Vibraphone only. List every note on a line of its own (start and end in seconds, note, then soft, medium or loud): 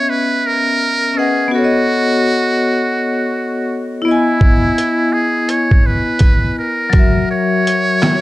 0.00 1.11 B3 medium
0.00 1.10 C#4 medium
0.00 1.13 D#5 medium
0.00 1.15 E5 medium
1.14 1.51 C#4 soft
1.14 1.52 B4 soft
1.14 1.53 D#5 soft
1.19 1.53 F#5 medium
1.48 3.99 B3 medium
1.48 4.00 F#4 medium
1.55 4.02 A4 medium
1.55 1.63 C#5 medium
1.64 4.07 D#5 medium
4.02 6.90 B3 medium
4.02 6.88 E4 medium
4.08 6.92 D#5 medium
4.08 6.93 G#5 medium
6.90 8.21 F#3 medium
6.90 8.21 F#4 medium
6.96 8.21 A#4 medium
6.96 8.21 E5 medium